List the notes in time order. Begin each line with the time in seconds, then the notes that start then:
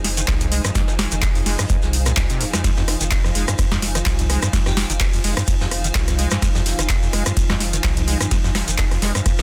Already playing: F1 F3 D#4 G#4 C5 F5 G#5
0.04 snare, closed hi-hat, open hi-hat
0.17 D#3, closed hi-hat, shekere
0.27 F1 C2, kick, snare, clap, closed hi-hat, shekere
0.40 F2, closed hi-hat, shekere
0.52 G#3, closed hi-hat, open hi-hat
0.64 G2, cross-stick, closed hi-hat, shekere
0.75 F1 F2, kick, snare, closed hi-hat, shekere
0.88 snare, shekere
0.98 snare, closed hi-hat, open hi-hat
1.11 F1 D#3, closed hi-hat, shekere
1.22 F1, kick, snare, clap, closed hi-hat, shekere
1.35 F2, open hi-hat, shekere
1.46 F1 G#3, snare, open hi-hat
1.59 G2, cross-stick, closed hi-hat, shekere
1.70 F2, kick, closed hi-hat, shekere
1.82 C2, snare, shekere
1.93 closed hi-hat, open hi-hat
2.06 A#2, cross-stick, closed hi-hat, shekere
2.17 C2 F2, kick, snare, clap, closed hi-hat, shekere
2.29 C3, snare, closed hi-hat, shekere
2.41 F2, closed hi-hat, open hi-hat
2.53 F2, cross-stick, snare, closed hi-hat, shekere
2.64 F1 F2 F4, kick, snare, closed hi-hat, ride, shekere
2.76 F2, snare, shekere
2.88 cross-stick, snare, closed hi-hat, open hi-hat
3.01 F1 D#3, closed hi-hat, shekere
3.11 F1, kick, snare, clap, closed hi-hat, ride, shekere
3.24 F2, cross-stick, shekere
3.35 F1 G#3, closed hi-hat, open hi-hat
3.48 G2, cross-stick, closed hi-hat, shekere
3.58 F2, kick, cross-stick, closed hi-hat, ride, shekere
3.71 F1 F2, snare, shekere
3.82 snare, closed hi-hat, open hi-hat
3.95 D#3, cross-stick, closed hi-hat, shekere
4.06 F1 C2, kick, snare, clap, closed hi-hat, ride, shekere
4.19 F2, closed hi-hat, shekere
4.30 G#3, cross-stick, closed hi-hat, open hi-hat
4.42 G2, cross-stick, closed hi-hat, shekere
4.53 F1 F2, kick, snare, closed hi-hat, ride, shekere
4.66 F2 G4, cross-stick, snare, shekere
4.77 G4, snare, closed hi-hat, open hi-hat
4.90 F1 D#3, closed hi-hat, shekere
5.00 F1, kick, cross-stick, snare, clap, closed hi-hat, ride, shekere
5.13 F2, open hi-hat, shekere
5.24 F1 G#3, open hi-hat
5.37 G2, cross-stick, closed hi-hat, shekere
5.47 F2, kick, closed hi-hat, ride, shekere
5.61 F1 F2, snare, shekere
5.71 cross-stick, closed hi-hat, open hi-hat
5.84 D#3, closed hi-hat, shekere
5.95 F1 C2, kick, snare, clap, closed hi-hat, ride, shekere
6.08 F2, cross-stick, snare, closed hi-hat, shekere
6.19 G#3, closed hi-hat, open hi-hat
6.31 G2, cross-stick, snare, closed hi-hat, shekere
6.42 F1 F2, kick, cross-stick, snare, closed hi-hat, ride, shekere
6.55 F2, snare, shekere
6.66 snare, closed hi-hat, open hi-hat
6.79 F1 D#3, cross-stick, closed hi-hat, shekere
6.89 F1, kick, snare, clap, closed hi-hat, ride, shekere
7.02 F2, shekere
7.13 F1 G#3, cross-stick, closed hi-hat, open hi-hat
7.26 G2, cross-stick, closed hi-hat, shekere
7.36 F2, kick, closed hi-hat, ride, shekere
7.50 F1 F2, cross-stick, snare, shekere
7.60 snare, closed hi-hat, open hi-hat
7.73 D#3, closed hi-hat, shekere
7.84 F1 C2, kick, cross-stick, snare, clap, closed hi-hat, ride, shekere
7.97 F2, closed hi-hat, shekere
8.08 G#3, closed hi-hat, open hi-hat
8.20 G2, cross-stick, closed hi-hat, shekere
8.31 F1 F2, kick, snare, closed hi-hat, ride, shekere
8.44 F2, snare, shekere
8.55 cross-stick, snare, closed hi-hat, open hi-hat
8.68 F1 D#3, closed hi-hat, shekere
8.78 F1, kick, snare, clap, closed hi-hat, ride
8.91 F2, cross-stick, open hi-hat, shekere
9.02 F1 G#3, snare, closed hi-hat, open hi-hat
9.15 G2, cross-stick, closed hi-hat, shekere
9.26 F2, kick, cross-stick, closed hi-hat, ride, shekere
9.38 C2 F2, snare, shekere